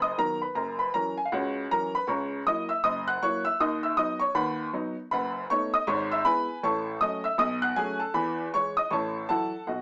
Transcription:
upright piano
Already playing: F#1 F#2
0.02 D#5 D#6
0.18 D#3 F#3 B3 A#4 A#5
0.42 B4 B5
0.55 F#1 F#2 A#4 A#5
0.79 B4 B5
0.94 E3 F#3 C#4 A#4 A#5
1.18 G#5
1.25 F5
1.32 C#2 C#3 F#4 C#5 F#5
1.71 E3 F#3 C#4 A#4 A#5
1.95 B4 B5
2.07 C#2 C#3 C#5 A#5 C#6
2.47 F#3 A#3 E4 D#5 D#6
2.69 E5 E6
2.84 F#1 F#2 D#5 D#6
3.08 F#5 F#6
3.22 F#3 A#3 E4 C#5 C#6
3.45 E5 E6
3.60 D#2 D#3 D#5 D#6
3.83 E5 E6
3.97 F#3 B3 D#4 D#5 D#6
4.20 C#5 C#6
4.35 D#2 D#3 B4 F#5 B5
4.73 F#3 B3 D#4
5.11 F#1 F#2 B4 F#5 B5
5.50 A3 B3 D#4 C#5 C#6
5.74 D#5 D#6
5.87 G#1 G#2 C#5 C#6
6.12 E5 E6
6.25 G#3 B3 E4 B4 G#5 B5
6.63 A1 A2 C#5 A5 C#6
7.01 F#3 A3 C#4 D#5 D#6
7.24 E5 E6
7.38 B1 B2 D#5 D#6
7.62 F#5 F#6
7.76 F#3 A3 C#4 G#4 G#5
7.99 A4 A5
8.14 E2 E3 B4 G#5 B5
8.54 E3 G#3 E4 C#5 C#6
8.77 D#5 D#6
8.91 A1 A2 C#5 A5 C#6
9.29 E3 F#3 E4 A4 F#5 A5
9.67 B1 B2 F#4 D#5 F#5

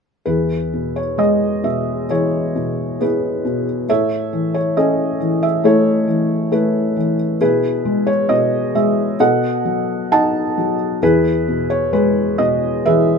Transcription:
felt piano
0.26 E2 E4 G#4 B4
0.73 B2
0.96 C#5
1.18 G#3 D#5
1.64 B2 E5
2.10 E3 E4 G#4 C#5
2.56 B2
3.00 B3 E4 G#4 B4
3.45 B2
3.89 A2 A4 C#5 E5
4.33 E3
4.54 C#5
4.77 C#4 A4 D#5
5.20 E3
5.43 E5
5.64 A3 E4 A4 C#5
6.08 E3
6.52 A3 E4 B4
6.97 E3
7.41 B2 E4 G#4 B4
7.85 G#3
8.07 C#5
8.29 B2 D#5
8.75 G#3 E5
9.20 B2 A4 D#5 F#5
9.65 F#3
10.12 D#4 D#5 F#5 A5
10.58 F#3
11.02 E2 E4 G#4 B4
11.48 B2
11.70 C#5
11.93 G#3 B4
12.38 B2 D#5
12.85 E3 G#4 B4 E5

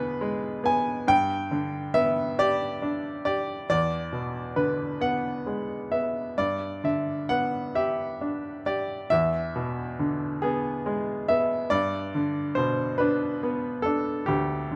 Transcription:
upright piano
Already playing: E2 B2 D3 B3 G#4 A4 B4
0.21 G#3
0.64 B3 G#5
1.07 G2 G5
1.51 D3
1.94 B3 E5
2.39 G4 D5
2.82 D4
3.25 G4 D5
3.70 E2 D5
4.13 B2
4.56 D3 B4
5.01 B3 F#5
5.46 G#3
5.92 B3 E5
6.38 G2 D5
6.84 D3 E5
7.29 B3 F#5
7.75 G4 E5
8.21 D4
8.66 G4 D5
9.10 E2 E5
9.56 B2
9.99 D3
10.42 B3 G#4
10.86 G#3
11.28 B3 E5
11.70 G2 D5
12.15 D3
12.55 B2 C5
12.98 D4 B4
13.43 B3
13.82 D4 A4
14.26 D2 G4
14.71 D3

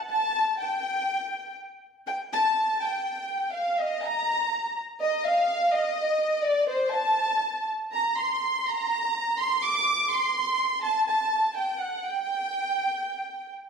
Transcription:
violin section
0.09 A5
0.59 G5
2.07 G5
2.33 A5
2.82 G5
3.53 F5
3.79 D#5
4.02 A#5
5.00 D#5
5.25 F5
5.72 D#5
6.42 D5
6.69 C5
6.92 A5
7.92 A#5
8.18 C6
8.67 A#5
9.38 C6
9.62 D6
10.12 C6
10.82 A5
11.06 A5
11.56 G5
11.78 F#5
12.04 G5

